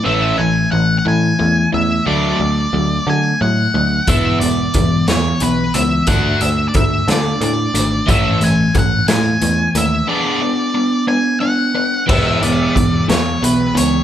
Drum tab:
CC |------|------|------|------|
HH |------|------|xxxxxx|xxxxxx|
SD |------|------|---o--|---o--|
BD |------|------|o-o---|o-o---|

CC |------|------|x-----|
HH |xxxxxx|------|-xxxxx|
SD |---o--|------|---o--|
BD |o-o---|------|o-o---|